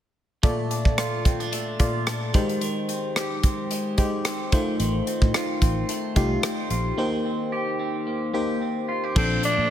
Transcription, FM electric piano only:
0, 0, Header, 1, 2, 480
1, 0, Start_track
1, 0, Key_signature, -2, "major"
1, 0, Tempo, 545455
1, 381, Time_signature, 4, 2, 24, 8
1, 8537, End_track
2, 0, Start_track
2, 0, Title_t, "FM electric piano"
2, 0, Program_c, 0, 5
2, 378, Note_on_c, 0, 46, 71
2, 381, Note_on_c, 0, 65, 63
2, 385, Note_on_c, 0, 69, 66
2, 388, Note_on_c, 0, 74, 80
2, 521, Control_c, 0, 64, 127
2, 981, Note_off_c, 0, 46, 0
2, 982, Note_off_c, 0, 65, 0
2, 984, Note_off_c, 0, 69, 0
2, 986, Note_off_c, 0, 74, 0
2, 1578, Note_on_c, 0, 46, 69
2, 1582, Note_on_c, 0, 65, 58
2, 1585, Note_on_c, 0, 69, 59
2, 1589, Note_on_c, 0, 74, 75
2, 2026, Note_off_c, 0, 46, 0
2, 2028, Note_off_c, 0, 65, 0
2, 2030, Note_off_c, 0, 69, 0
2, 2031, Note_off_c, 0, 74, 0
2, 2057, Note_on_c, 0, 56, 73
2, 2061, Note_on_c, 0, 63, 71
2, 2065, Note_on_c, 0, 67, 68
2, 2067, Note_on_c, 0, 72, 82
2, 2074, Control_c, 0, 64, 0
2, 2248, Control_c, 0, 64, 127
2, 2832, Note_off_c, 0, 56, 0
2, 2834, Note_off_c, 0, 63, 0
2, 2836, Note_off_c, 0, 67, 0
2, 2837, Note_off_c, 0, 72, 0
2, 3498, Note_on_c, 0, 56, 68
2, 3501, Note_on_c, 0, 63, 62
2, 3505, Note_on_c, 0, 67, 64
2, 3508, Note_on_c, 0, 72, 73
2, 3946, Note_off_c, 0, 56, 0
2, 3947, Note_off_c, 0, 63, 0
2, 3950, Note_off_c, 0, 67, 0
2, 3951, Note_off_c, 0, 72, 0
2, 3978, Note_on_c, 0, 57, 79
2, 3981, Note_on_c, 0, 63, 71
2, 3986, Note_on_c, 0, 65, 70
2, 3989, Note_on_c, 0, 72, 83
2, 3992, Control_c, 0, 64, 0
2, 4161, Control_c, 0, 64, 127
2, 4753, Note_off_c, 0, 57, 0
2, 4754, Note_off_c, 0, 63, 0
2, 4756, Note_off_c, 0, 65, 0
2, 4758, Note_off_c, 0, 72, 0
2, 5418, Note_on_c, 0, 57, 72
2, 5422, Note_on_c, 0, 63, 66
2, 5425, Note_on_c, 0, 65, 63
2, 5429, Note_on_c, 0, 67, 80
2, 5866, Note_off_c, 0, 57, 0
2, 5868, Note_off_c, 0, 63, 0
2, 5870, Note_off_c, 0, 65, 0
2, 5871, Note_off_c, 0, 67, 0
2, 6138, Note_on_c, 0, 58, 79
2, 6141, Note_on_c, 0, 63, 70
2, 6145, Note_on_c, 0, 67, 69
2, 6148, Note_on_c, 0, 72, 80
2, 6151, Control_c, 0, 64, 0
2, 6325, Control_c, 0, 64, 127
2, 6741, Note_off_c, 0, 58, 0
2, 6742, Note_off_c, 0, 63, 0
2, 6744, Note_off_c, 0, 67, 0
2, 6746, Note_off_c, 0, 72, 0
2, 7335, Note_on_c, 0, 58, 73
2, 7339, Note_on_c, 0, 63, 64
2, 7342, Note_on_c, 0, 67, 65
2, 7346, Note_on_c, 0, 72, 78
2, 7784, Note_off_c, 0, 58, 0
2, 7786, Note_off_c, 0, 63, 0
2, 7788, Note_off_c, 0, 67, 0
2, 7790, Note_off_c, 0, 72, 0
2, 8057, Note_on_c, 0, 53, 66
2, 8060, Note_on_c, 0, 46, 62
2, 8064, Note_on_c, 0, 62, 62
2, 8067, Note_on_c, 0, 69, 70
2, 8074, Control_c, 0, 64, 0
2, 8210, Control_c, 0, 64, 127
2, 8537, Note_off_c, 0, 46, 0
2, 8537, Note_off_c, 0, 53, 0
2, 8537, Note_off_c, 0, 62, 0
2, 8537, Note_off_c, 0, 69, 0
2, 8537, End_track
0, 0, End_of_file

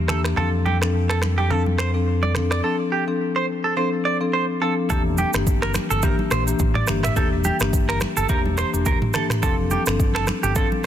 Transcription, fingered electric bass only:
0, 0, Header, 1, 2, 480
1, 0, Start_track
1, 0, Tempo, 566038
1, 316, Time_signature, 4, 2, 24, 8
1, 9210, End_track
2, 0, Start_track
2, 0, Title_t, "Fingered electric bass"
2, 0, Program_c, 0, 33
2, 0, Note_on_c, 0, 40, 84
2, 282, Note_off_c, 0, 40, 0
2, 316, Note_on_c, 0, 41, 84
2, 2202, Note_off_c, 0, 41, 0
2, 4156, Note_on_c, 0, 28, 113
2, 4431, Note_off_c, 0, 28, 0
2, 4528, Note_on_c, 0, 31, 83
2, 4883, Note_off_c, 0, 31, 0
2, 5008, Note_on_c, 0, 31, 83
2, 5185, Note_off_c, 0, 31, 0
2, 5356, Note_on_c, 0, 34, 91
2, 5533, Note_off_c, 0, 34, 0
2, 5594, Note_on_c, 0, 33, 89
2, 5772, Note_off_c, 0, 33, 0
2, 5835, Note_on_c, 0, 31, 85
2, 6013, Note_off_c, 0, 31, 0
2, 6075, Note_on_c, 0, 28, 107
2, 6351, Note_off_c, 0, 28, 0
2, 6446, Note_on_c, 0, 31, 79
2, 6802, Note_off_c, 0, 31, 0
2, 6927, Note_on_c, 0, 31, 83
2, 7007, Note_off_c, 0, 31, 0
2, 7033, Note_on_c, 0, 28, 100
2, 7310, Note_off_c, 0, 28, 0
2, 7407, Note_on_c, 0, 28, 81
2, 7585, Note_off_c, 0, 28, 0
2, 7996, Note_on_c, 0, 29, 100
2, 8271, Note_off_c, 0, 29, 0
2, 8368, Note_on_c, 0, 31, 82
2, 8723, Note_off_c, 0, 31, 0
2, 8848, Note_on_c, 0, 31, 86
2, 9026, Note_off_c, 0, 31, 0
2, 9210, End_track
0, 0, End_of_file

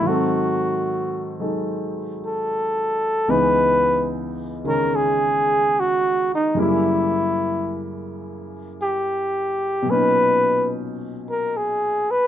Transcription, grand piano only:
0, 0, Header, 1, 2, 480
1, 0, Start_track
1, 0, Key_signature, 5, "minor"
1, 0, Tempo, 818554
1, 11, Time_signature, 4, 2, 24, 8
1, 4331, Tempo, 829876
1, 7158, End_track
2, 0, Start_track
2, 0, Title_t, "Grand piano"
2, 0, Program_c, 0, 0
2, 0, Control_c, 0, 64, 127
2, 0, Note_on_c, 0, 44, 46
2, 8, Note_on_c, 0, 51, 46
2, 18, Control_c, 0, 64, 0
2, 25, Note_on_c, 0, 54, 41
2, 38, Note_on_c, 0, 60, 40
2, 53, Note_on_c, 0, 69, 51
2, 105, Control_c, 0, 64, 127
2, 811, Note_off_c, 0, 54, 0
2, 819, Note_on_c, 0, 54, 35
2, 824, Note_off_c, 0, 69, 0
2, 824, Note_on_c, 0, 56, 34
2, 829, Note_on_c, 0, 63, 30
2, 833, Note_on_c, 0, 69, 36
2, 1916, Note_off_c, 0, 44, 0
2, 1924, Note_off_c, 0, 63, 0
2, 1925, Note_off_c, 0, 51, 0
2, 1925, Note_on_c, 0, 37, 45
2, 1925, Note_on_c, 0, 49, 43
2, 1926, Note_on_c, 0, 52, 42
2, 1926, Note_on_c, 0, 59, 43
2, 1927, Note_off_c, 0, 54, 0
2, 1929, Note_off_c, 0, 56, 0
2, 1933, Note_off_c, 0, 69, 0
2, 1933, Control_c, 0, 64, 0
2, 1933, Note_on_c, 0, 63, 49
2, 1940, Note_off_c, 0, 60, 0
2, 2051, Control_c, 0, 64, 127
2, 2715, Note_off_c, 0, 49, 0
2, 2723, Note_on_c, 0, 49, 36
2, 2733, Note_on_c, 0, 51, 34
2, 2738, Note_on_c, 0, 56, 34
2, 2744, Note_on_c, 0, 61, 40
2, 3840, Note_off_c, 0, 49, 0
2, 3840, Note_on_c, 0, 42, 48
2, 3847, Note_off_c, 0, 37, 0
2, 3847, Note_off_c, 0, 51, 0
2, 3848, Note_off_c, 0, 52, 0
2, 3848, Note_off_c, 0, 59, 0
2, 3849, Note_on_c, 0, 49, 39
2, 3850, Note_off_c, 0, 56, 0
2, 3851, Note_off_c, 0, 63, 0
2, 3853, Note_off_c, 0, 61, 0
2, 3855, Control_c, 0, 64, 0
2, 3857, Note_on_c, 0, 55, 42
2, 3862, Note_on_c, 0, 58, 39
2, 3869, Note_on_c, 0, 64, 49
2, 3951, Control_c, 0, 64, 127
2, 5742, Note_on_c, 0, 47, 42
2, 5758, Note_on_c, 0, 54, 36
2, 5769, Note_off_c, 0, 42, 0
2, 5774, Note_off_c, 0, 49, 0
2, 5774, Note_on_c, 0, 46, 38
2, 5777, Note_off_c, 0, 55, 0
2, 5780, Note_off_c, 0, 58, 0
2, 5780, Control_c, 0, 64, 0
2, 5784, Note_off_c, 0, 64, 0
2, 5788, Note_on_c, 0, 61, 41
2, 5804, Note_on_c, 0, 63, 47
2, 5873, Control_c, 0, 64, 127
2, 7158, Note_off_c, 0, 46, 0
2, 7158, Note_off_c, 0, 47, 0
2, 7158, Note_off_c, 0, 54, 0
2, 7158, Note_off_c, 0, 61, 0
2, 7158, Note_off_c, 0, 63, 0
2, 7158, End_track
0, 0, End_of_file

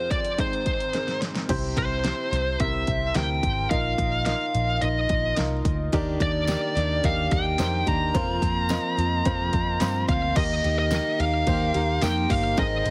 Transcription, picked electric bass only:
0, 0, Header, 1, 2, 480
1, 0, Start_track
1, 0, Tempo, 554529
1, 1291, Time_signature, 4, 2, 24, 8
1, 11169, End_track
2, 0, Start_track
2, 0, Title_t, "Picked electric bass"
2, 0, Program_c, 0, 34
2, 1293, Note_on_c, 0, 36, 78
2, 1489, Note_off_c, 0, 36, 0
2, 1528, Note_on_c, 0, 36, 88
2, 1825, Note_off_c, 0, 36, 0
2, 2011, Note_on_c, 0, 36, 84
2, 2208, Note_off_c, 0, 36, 0
2, 2251, Note_on_c, 0, 36, 83
2, 2448, Note_off_c, 0, 36, 0
2, 2490, Note_on_c, 0, 36, 79
2, 2688, Note_off_c, 0, 36, 0
2, 2733, Note_on_c, 0, 38, 90
2, 2929, Note_off_c, 0, 38, 0
2, 2970, Note_on_c, 0, 32, 75
2, 3168, Note_off_c, 0, 32, 0
2, 3211, Note_on_c, 0, 34, 88
2, 3408, Note_off_c, 0, 34, 0
2, 3450, Note_on_c, 0, 34, 95
2, 3746, Note_off_c, 0, 34, 0
2, 3937, Note_on_c, 0, 34, 87
2, 4132, Note_off_c, 0, 34, 0
2, 4175, Note_on_c, 0, 34, 93
2, 4370, Note_off_c, 0, 34, 0
2, 4412, Note_on_c, 0, 34, 95
2, 4609, Note_off_c, 0, 34, 0
2, 4658, Note_on_c, 0, 36, 81
2, 4852, Note_off_c, 0, 36, 0
2, 4890, Note_on_c, 0, 38, 79
2, 5088, Note_off_c, 0, 38, 0
2, 5133, Note_on_c, 0, 39, 86
2, 5329, Note_off_c, 0, 39, 0
2, 5368, Note_on_c, 0, 39, 89
2, 5665, Note_off_c, 0, 39, 0
2, 5855, Note_on_c, 0, 39, 93
2, 6051, Note_off_c, 0, 39, 0
2, 6093, Note_on_c, 0, 39, 97
2, 6290, Note_off_c, 0, 39, 0
2, 6333, Note_on_c, 0, 39, 93
2, 6529, Note_off_c, 0, 39, 0
2, 6574, Note_on_c, 0, 41, 75
2, 6770, Note_off_c, 0, 41, 0
2, 6814, Note_on_c, 0, 39, 80
2, 7010, Note_off_c, 0, 39, 0
2, 7052, Note_on_c, 0, 41, 90
2, 7249, Note_off_c, 0, 41, 0
2, 7291, Note_on_c, 0, 41, 92
2, 7587, Note_off_c, 0, 41, 0
2, 7775, Note_on_c, 0, 41, 96
2, 7970, Note_off_c, 0, 41, 0
2, 8013, Note_on_c, 0, 41, 90
2, 8209, Note_off_c, 0, 41, 0
2, 8252, Note_on_c, 0, 41, 91
2, 8449, Note_off_c, 0, 41, 0
2, 8495, Note_on_c, 0, 43, 79
2, 8690, Note_off_c, 0, 43, 0
2, 8730, Note_on_c, 0, 38, 83
2, 8928, Note_off_c, 0, 38, 0
2, 8970, Note_on_c, 0, 39, 103
2, 9167, Note_off_c, 0, 39, 0
2, 9216, Note_on_c, 0, 39, 95
2, 9509, Note_off_c, 0, 39, 0
2, 9694, Note_on_c, 0, 39, 94
2, 9890, Note_off_c, 0, 39, 0
2, 9929, Note_on_c, 0, 39, 105
2, 10126, Note_off_c, 0, 39, 0
2, 10169, Note_on_c, 0, 39, 96
2, 10366, Note_off_c, 0, 39, 0
2, 10413, Note_on_c, 0, 41, 86
2, 10608, Note_off_c, 0, 41, 0
2, 10649, Note_on_c, 0, 31, 87
2, 10846, Note_off_c, 0, 31, 0
2, 10888, Note_on_c, 0, 32, 102
2, 11085, Note_off_c, 0, 32, 0
2, 11129, Note_on_c, 0, 32, 97
2, 11169, Note_off_c, 0, 32, 0
2, 11169, End_track
0, 0, End_of_file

